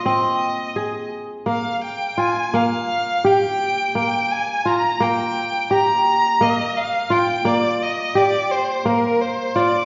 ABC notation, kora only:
X:1
M:7/8
L:1/8
Q:1/4=85
K:Bbmix
V:1 name="Kora"
C2 A2 B,2 F | B,2 G2 B,2 F | B,2 G2 B,2 F | B,2 G2 B,2 F |]